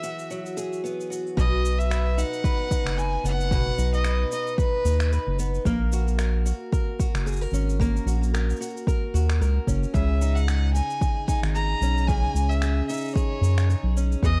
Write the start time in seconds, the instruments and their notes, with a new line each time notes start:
Already playing: steel-string acoustic guitar E3 F#3 B3 G#4, violin E5
0.03 steel-string acoustic guitar F#4, shaker
0.19 shaker
0.30 steel-string acoustic guitar F#3, shaker
0.46 shaker
0.57 steel-string acoustic guitar G#4, shaker
0.73 shaker
0.84 steel-string acoustic guitar B3, shaker
1.01 shaker
1.10 steel-string acoustic guitar F#4, shaker
1.27 shaker
1.37 analog synth bass B1, steel-string acoustic guitar B2 B4, violin D#5, kick, shaker
1.65 shaker
1.79 violin E5, shaker
1.90 steel-string acoustic guitar B4, finger snap, shaker
2.17 steel-string acoustic guitar D#4, violin F#5, shaker
2.33 shaker
2.44 steel-string acoustic guitar B4, kick, shaker
2.71 steel-string acoustic guitar D#4, kick, shaker
2.85 analog synth bass F#1, finger snap, shaker
2.98 steel-string acoustic guitar B4, violin G#5, shaker
3.24 analog synth bass F#1, steel-string acoustic guitar B3, violin F#5, shaker
3.40 shaker
3.51 steel-string acoustic guitar B2 B4, kick, shaker
3.78 analog synth bass B1, steel-string acoustic guitar D#4, shaker
3.93 violin D#5, shaker
4.04 steel-string acoustic guitar B4, finger snap, shaker
4.32 steel-string acoustic guitar D#4, violin D#5, shaker
4.47 shaker
4.58 steel-string acoustic guitar B4, violin B4, kick, shaker
4.85 analog synth bass D#2, steel-string acoustic guitar D#4, shaker
5.00 finger snap, shaker
5.12 steel-string acoustic guitar B4, shaker
5.27 analog synth bass F#1
5.39 steel-string acoustic guitar B3, shaker
5.55 shaker
5.65 analog synth bass A#1, steel-string acoustic guitar A#3 A#4, kick, shaker
5.92 steel-string acoustic guitar F#4, shaker
6.08 shaker
6.19 steel-string acoustic guitar A#4, finger snap, shaker
6.46 steel-string acoustic guitar F#4, shaker
6.72 steel-string acoustic guitar A#4, kick, shaker
6.99 steel-string acoustic guitar F#4, kick, shaker
7.14 analog synth bass F#1, finger snap, shaker
7.26 steel-string acoustic guitar G#4, shaker
7.32 shaker
7.36 shaker
7.41 steel-string acoustic guitar A#4, shaker
7.45 shaker
7.50 analog synth bass G#1, steel-string acoustic guitar C#4, shaker
7.54 shaker
7.69 shaker
7.80 steel-string acoustic guitar A#3 A#4, kick, shaker
7.97 shaker
8.06 analog synth bass A#1, steel-string acoustic guitar F#4, shaker
8.23 shaker
8.34 steel-string acoustic guitar A#4, finger snap, shaker
8.50 shaker
8.56 shaker
8.60 steel-string acoustic guitar F#4, shaker
8.70 shaker
8.77 shaker
8.87 steel-string acoustic guitar A#4, kick, shaker
9.14 analog synth bass D#2, steel-string acoustic guitar F#4, shaker
9.30 finger snap, shaker
9.41 analog synth bass C#2, steel-string acoustic guitar A#4, shaker
9.67 analog synth bass F#1, steel-string acoustic guitar C#4, kick, shaker
9.83 shaker
9.94 analog synth bass C#2, steel-string acoustic guitar C#3 G#4, violin E5, kick, shaker
10.21 steel-string acoustic guitar D#4, shaker
10.35 violin F#5, shaker
10.48 steel-string acoustic guitar G#4, finger snap, shaker
10.73 steel-string acoustic guitar D#4, violin G#5, shaker
10.90 shaker
11.01 steel-string acoustic guitar G#4, kick, shaker
11.27 steel-string acoustic guitar D#4, violin G#5, kick, shaker
11.43 analog synth bass G#1, finger snap, shaker
11.55 steel-string acoustic guitar G#4, violin A#5, shaker
11.81 analog synth bass B1, steel-string acoustic guitar C#4, shaker
11.97 shaker
12.07 steel-string acoustic guitar C#3 G#4, violin G#5, kick, shaker
12.34 analog synth bass C#2, shaker
12.49 violin E5, shaker
12.62 steel-string acoustic guitar G#4, finger snap, shaker
12.87 steel-string acoustic guitar D#4, violin E5, shaker
12.93 shaker
12.97 shaker
13.01 shaker
13.05 shaker
13.08 shaker
13.11 shaker
13.14 steel-string acoustic guitar G#4, violin C#5, kick, shaker
13.17 shaker
13.41 analog synth bass F#2, steel-string acoustic guitar D#4, shaker
13.58 finger snap, shaker
13.70 steel-string acoustic guitar G#4, shaker
13.83 analog synth bass B1
13.97 steel-string acoustic guitar C#4, shaker
14.12 shaker
14.22 analog synth bass E2, steel-string acoustic guitar E3 G#4, violin D#5, kick, shaker